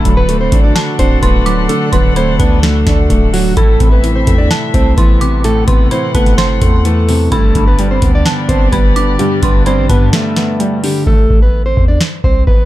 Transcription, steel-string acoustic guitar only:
0.00 0.15 A3 medium
0.00 0.15 A4 loud
0.17 0.37 B3 medium
0.17 0.36 B4 medium
0.41 0.61 C4 medium
0.41 0.60 C5 medium
0.64 0.74 D4 medium
0.64 0.74 D5 medium
0.99 1.19 C4 medium
0.99 1.19 C5 medium
1.23 1.67 B3 medium
1.23 1.67 B4 medium
1.69 1.89 A3 medium
1.69 1.89 A4 medium
1.93 2.13 B3 medium
1.93 2.13 B4 medium
2.17 2.37 C4 medium
2.17 2.36 C5 medium
2.39 2.59 B3 medium
2.39 2.59 B4 medium
2.63 3.30 A3 medium
2.63 3.29 A4 medium
3.33 3.53 F#3 medium
3.33 3.53 F#4 medium
3.57 3.90 A3 medium
3.57 3.90 A4 loud
3.92 4.12 B3 medium
3.92 4.11 B4 medium
4.15 4.35 C4 medium
4.15 4.35 C5 medium
4.38 4.49 D4 medium
4.38 4.48 D5 medium
4.74 4.94 C4 medium
4.74 4.94 C5 medium
4.97 5.42 B3 medium
4.97 5.41 B4 medium
5.45 5.65 A3 medium
5.45 5.64 A4 loud
5.68 5.88 B3 medium
5.68 5.87 B4 medium
5.92 6.12 C4 medium
5.92 6.11 C5 medium
6.15 6.35 B3 medium
6.15 6.34 B4 medium
6.38 6.82 C4 medium
6.38 6.82 C5 medium
6.85 7.29 A3 medium
6.85 7.29 A4 medium
7.33 7.66 A3 medium
7.33 7.65 A4 loud
7.67 7.87 B3 medium
7.67 7.87 B4 medium
7.91 8.11 C4 medium
7.91 8.10 C5 medium
8.15 8.25 D4 medium
8.15 8.24 D5 medium
8.49 8.69 C4 medium
8.49 8.68 C5 medium
8.72 9.17 B3 medium
8.72 9.16 B4 medium
9.19 9.39 G3 medium
9.19 9.39 G4 medium
9.44 9.63 B3 medium
9.44 9.63 B4 medium
9.67 9.86 C4 medium
9.67 9.86 C5 medium
9.90 10.10 B3 medium
9.90 10.10 B4 medium
10.13 10.80 A3 medium
10.13 10.79 A4 medium
10.84 11.04 G3 medium
10.84 11.03 G4 medium
11.07 11.40 A3 medium
11.07 11.40 A4 loud
11.42 11.62 B3 medium
11.42 11.62 B4 medium
11.66 11.86 C4 medium
11.66 11.85 C5 medium
11.88 11.99 D4 medium
11.88 11.98 D5 medium
12.24 12.44 C4 medium
12.24 12.44 C5 medium
12.47 12.65 B3 medium
12.47 12.65 B4 medium

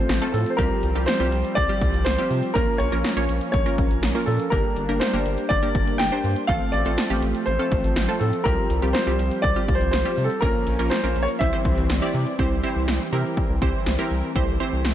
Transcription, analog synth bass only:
0.09 0.20 A1 loud
0.34 0.45 A2 loud
0.59 0.70 C2 loud
0.83 0.94 C2 loud
0.95 1.06 C2 loud
1.20 1.31 C2 loud
1.32 1.43 C2 loud
1.57 1.68 C2 loud
1.81 1.93 C2 loud
1.94 2.05 C2 loud
2.06 2.17 C2 loud
2.31 2.42 C3 loud
2.55 2.66 A#1 loud
2.80 2.91 A#1 loud
2.92 3.03 A#1 loud
3.17 3.28 A#1 loud
3.29 3.40 A#1 loud
3.54 3.65 A#1 loud
3.78 3.89 A#1 loud
3.90 4.02 A#1 loud
4.03 4.14 A#1 medium
4.27 4.38 A#2 loud
4.52 4.63 G1 loud
4.77 4.88 G1 loud
4.89 5.00 G1 loud
5.13 5.25 G1 loud
5.26 5.37 G1 loud
5.50 5.61 G1 loud
5.75 5.86 G1 loud
5.87 5.98 G1 loud
6.00 6.11 G1 loud
6.24 6.35 G2 loud
6.49 6.60 A1 loud
6.73 6.84 A1 loud
6.86 6.97 A1 loud
7.10 7.21 A1 loud
7.23 7.34 A1 loud
7.47 7.58 A1 loud
7.72 7.83 A1 loud
7.84 7.95 A1 loud
7.96 8.07 A1 loud
8.21 8.32 A2 loud
8.46 8.57 C2 loud
8.70 8.81 C2 loud
8.82 8.93 C2 loud
9.07 9.18 C2 loud
9.19 9.30 C2 loud
9.44 9.55 C2 medium
9.68 9.79 C2 loud
9.81 9.92 C2 loud
9.93 10.04 C2 loud
10.18 10.29 C3 loud
10.42 10.53 A#1 loud
10.67 10.78 A#1 loud
10.79 10.90 A#1 loud
11.04 11.15 A#1 medium
11.16 11.27 A#1 loud
11.41 11.52 C2 loud
11.65 11.76 C2 loud
11.77 11.88 C2 loud
11.90 12.01 C2 loud
12.14 12.25 C3 loud
12.39 12.50 C2 loud
12.51 12.62 C2 medium
12.76 12.87 C2 loud
12.88 12.99 C2 medium
13.13 13.24 C3 medium
13.49 13.61 C2 loud
13.62 13.73 C2 loud
13.86 13.97 C2 loud
14.11 14.22 C2 loud
14.36 14.47 C2 loud
14.48 14.59 C2 loud
14.72 14.84 C2 loud
14.85 14.94 C2 loud

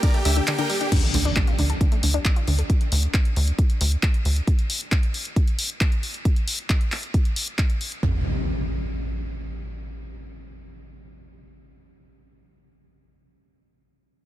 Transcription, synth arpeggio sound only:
0.03 0.08 D3 loud
0.14 0.20 A3 medium
0.25 0.31 D4 medium
0.36 0.45 D3 medium
0.48 0.53 D3 medium
0.59 0.64 D3 loud
0.70 0.73 G3 medium
0.81 0.86 D4 medium
0.92 0.97 D3 loud
1.03 1.08 A3 medium
1.14 1.17 D3 loud
1.25 1.31 D4 loud
1.36 1.40 D3 loud
1.48 1.51 F4 medium
1.59 1.64 D3 loud
1.70 1.73 A4 medium
1.81 1.86 D3 loud
1.92 1.97 A3 loud
2.03 2.06 D3 medium
2.14 2.20 D4 loud
2.25 2.29 D3 loud
2.36 2.42 F4 loud
2.47 2.53 D3 loud
2.59 2.62 A4 medium

